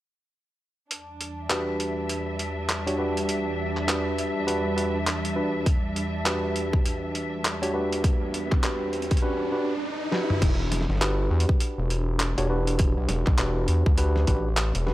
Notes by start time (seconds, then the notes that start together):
0.91 E2 E3 G3 D4, closed hi-hat
1.21 closed hi-hat
1.40 G3 E5
1.50 D4 F#4 G4 B4, clap, closed hi-hat
1.80 closed hi-hat
2.09 closed hi-hat
2.39 closed hi-hat
2.69 clap, closed hi-hat
2.87 D4 F#4 G4 C#5, closed hi-hat
2.98 D4 F#4 G4 B4
3.17 closed hi-hat
3.29 closed hi-hat
3.77 clap
3.88 D4 F#4 G4 B4, clap, closed hi-hat
4.18 closed hi-hat
4.47 D4 F#4 G4 B4, closed hi-hat
4.76 D4 F#4 G4 B4, closed hi-hat
5.07 clap, closed hi-hat
5.25 closed hi-hat
5.36 D4 F#4 G4 B4
5.66 kick, closed hi-hat, riser
5.96 closed hi-hat
6.25 D4 F#4 G4 B4, clap, closed hi-hat
6.56 closed hi-hat
6.73 kick
6.86 closed hi-hat
7.15 closed hi-hat
7.45 clap, closed hi-hat
7.62 D4 F#4 G4 C#5, closed hi-hat
7.74 D4 F#4 G4 B4
7.93 closed hi-hat
8.04 kick, closed hi-hat
8.34 closed hi-hat
8.52 kick, clap
8.63 D4 F#4 G4 B4, clap, closed hi-hat
8.93 closed hi-hat
9.02 closed hi-hat
9.11 kick, closed hi-hat
9.17 closed hi-hat
9.22 D4 F#4 G4 B4
9.52 D4 F#4 G4 B4
10.12 D4 F#4 G4 B4, snare
10.30 mid tom
10.42 E1, kick, closed hi-hat, crash
10.72 snare, closed hi-hat
10.81 snare
10.89 G1, snare
10.96 snare
11.01 D4 F#4 G4 B4, clap, closed hi-hat
11.31 E2
11.40 closed hi-hat
11.49 kick
11.60 closed hi-hat
11.78 E1
11.90 closed hi-hat
12.20 clap, closed hi-hat
12.38 E1 D4 F#4 G4 C#5, closed hi-hat
12.50 D4 F#4 G4 B4
12.67 closed hi-hat
12.79 kick, closed hi-hat
12.97 B1
13.09 E1, snare, closed hi-hat
13.26 B1, kick, clap
13.38 E1 D4 F#4 G4 B4, clap, closed hi-hat
13.68 E2, closed hi-hat
13.86 D2, kick
13.98 D4 F#4 G4 B4, closed hi-hat
14.16 snare
14.27 A1 D4 F#4 G4 B4, kick, closed hi-hat
14.57 clap, closed hi-hat
14.75 E1, closed hi-hat
14.86 D4 F#4 G4 B4, snare